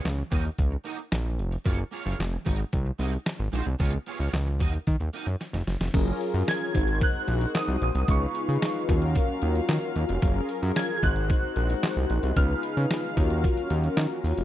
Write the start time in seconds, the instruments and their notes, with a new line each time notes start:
0.05 analog synth bass C#2, snare, clap, closed hi-hat
0.17 muted clean electric guitar stroke
0.31 analog synth bass D#2, clean electric guitar A#3 D#4 F#4 D#5, kick, closed hi-hat
0.44 muted clean electric guitar stroke, closed hi-hat
0.58 analog synth bass C#2, kick, closed hi-hat
0.71 muted clean electric guitar stroke
0.84 clean electric guitar A#3 D#4 F#4 D#5, closed hi-hat
0.98 muted clean electric guitar stroke, closed hi-hat
1.11 analog synth bass A#1, muted clean electric guitar stroke, snare, clap, closed hi-hat
1.25 muted clean electric guitar stroke
1.39 analog synth bass F1, closed hi-hat
1.51 muted clean electric guitar stroke, closed hi-hat
1.65 analog synth bass F#1, clean electric guitar A#3 F4 G#4 C#5, kick, closed hi-hat
1.78 muted clean electric guitar stroke
1.91 clean electric guitar A#3 F4 G#4 C#5, closed hi-hat
2.05 analog synth bass F#1, clean electric guitar A#3 F4 G#4 C#5, closed hi-hat
2.19 analog synth bass F1, snare, clap, closed hi-hat
2.32 muted clean electric guitar stroke
2.45 analog synth bass G#1, clean electric guitar G#3 D#4 F#4 D#5, kick, closed hi-hat
2.59 muted clean electric guitar stroke, closed hi-hat
2.73 analog synth bass C2, kick, closed hi-hat
2.85 muted clean electric guitar stroke
2.99 analog synth bass C2, clean electric guitar G#3 D#4 F#4 D#5, closed hi-hat
3.12 muted clean electric guitar stroke, closed hi-hat
3.26 muted clean electric guitar stroke, snare, clap, closed hi-hat
3.39 analog synth bass G#1, muted clean electric guitar stroke
3.52 analog synth bass A#1, clean electric guitar G#3 D#4 F#4 C5, closed hi-hat
3.65 analog synth bass C2, muted clean electric guitar stroke, closed hi-hat
3.79 analog synth bass C#2, clean electric guitar B3 F4 G#4 C#5, kick, closed hi-hat
3.93 muted clean electric guitar stroke
4.06 clean electric guitar B3 F4 G#4 C#5, closed hi-hat
4.20 analog synth bass C#2, clean electric guitar B3 F4 G#4 C#5, closed hi-hat
4.33 analog synth bass C#2, snare, clap, closed hi-hat
4.47 muted clean electric guitar stroke, closed hi-hat
4.59 analog synth bass D#2, clean electric guitar A#3 D#4 F#4 D#5, kick, closed hi-hat
4.73 muted clean electric guitar stroke, closed hi-hat
4.87 analog synth bass D#3, kick, closed hi-hat
5.00 analog synth bass D#2, muted clean electric guitar stroke, closed hi-hat
5.13 clean electric guitar A#3 D#4 F#4 D#5, closed hi-hat
5.27 analog synth bass F#2, muted clean electric guitar stroke, closed hi-hat
5.40 muted clean electric guitar stroke, snare, closed hi-hat
5.53 analog synth bass F1, muted clean electric guitar stroke, snare
5.67 analog synth bass F#1, snare, closed hi-hat
5.80 analog synth bass F1, muted clean electric guitar stroke, snare, closed hi-hat
5.93 analog synth bass F#1, string section F#3 C#4 F4 G#4 A#4, analog polysynth C#4 F4 G#4 A#4, kick, closed hi-hat, crash
6.21 closed hi-hat
6.34 analog synth bass F#2, closed hi-hat
6.48 synth bell G#6, snare, clap, closed hi-hat
6.73 analog synth bass G#1, string section G#3 C4 F#4, analog polysynth D#4 F#4 A#4 C5, kick, closed hi-hat
6.88 closed hi-hat
7.01 synth bell F#6, kick, closed hi-hat
7.28 analog synth bass A#1, closed hi-hat
7.41 closed hi-hat
7.55 synth bell D#6, snare, clap, closed hi-hat
7.68 analog synth bass C2
7.82 analog synth bass A#1, synth bell D#6, closed hi-hat
7.95 analog synth bass C2, closed hi-hat
8.08 analog synth bass C#2, string section C#3 B3 D#4 F5, analog polysynth D#4 F4 G#4 B4, synth bell C#6, kick, closed hi-hat
8.35 closed hi-hat
8.49 analog synth bass C#3, closed hi-hat
8.62 snare, clap, closed hi-hat
8.87 analog synth bass D#2, string section D#3 F#3 A#3 C#4, analog polysynth C#4 F4 F#4 A#4, kick, closed hi-hat
9.02 closed hi-hat
9.15 kick, closed hi-hat
9.42 analog synth bass D#2, closed hi-hat
9.55 closed hi-hat
9.69 analog synth bass D#3, snare, clap, closed hi-hat
9.96 analog synth bass D#2, closed hi-hat
10.09 analog synth bass F1, closed hi-hat
10.22 analog synth bass F#1, string section F#3 G#4 A#4, analog polysynth C#4 F4 G#4 A#4, kick, closed hi-hat
10.49 closed hi-hat
10.63 analog synth bass F#2, closed hi-hat
10.76 synth bell G#6, snare, clap, closed hi-hat
10.97 synth bell G#6
11.02 analog synth bass G#1, string section G#3 C4 F#4, analog polysynth D#4 F#4 A#4 C5, synth bell F#6, kick, closed hi-hat
11.16 closed hi-hat
11.29 kick, closed hi-hat
11.56 analog synth bass A#1, closed hi-hat
11.70 closed hi-hat
11.83 snare, clap, closed hi-hat
11.96 analog synth bass C2
12.10 analog synth bass A#1, closed hi-hat
12.23 analog synth bass C2, closed hi-hat
12.36 analog synth bass C#2, string section C#3 B3 D#4 F5, analog polysynth D#4 F4 B4, synth bell F6, kick, closed hi-hat
12.63 closed hi-hat
12.77 analog synth bass C#3, closed hi-hat
12.91 snare, clap, closed hi-hat
13.04 closed hi-hat
13.16 analog synth bass D#2, string section D#3 F#3 A#3 C#4, analog polysynth C#4 F4 F#4 A#4, kick, closed hi-hat
13.30 closed hi-hat
13.44 kick, closed hi-hat
13.57 closed hi-hat
13.70 analog synth bass D#2, closed hi-hat
13.84 closed hi-hat
13.97 analog synth bass D#3, snare, clap, closed hi-hat
14.24 analog synth bass D#2, open hi-hat
14.38 analog synth bass F1, closed hi-hat